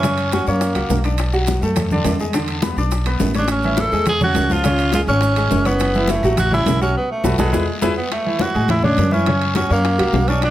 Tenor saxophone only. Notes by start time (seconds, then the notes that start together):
Already playing: C#4
0.33 C#4
0.48 A#3
3.38 D4
3.51 C#4
3.80 A4
4.09 G#4
4.23 F#4
4.52 F4
4.94 F4
5.08 C#4
5.66 B3
6.10 A3
6.39 F#4
6.54 E4
6.82 C#4
6.97 B3
7.11 A3
7.39 G#3
7.97 B3
8.12 A3
8.42 F#4
8.70 E4
8.85 D4
9.13 C#4
9.56 C#4
9.72 A#3
10.29 C#4
10.44 D4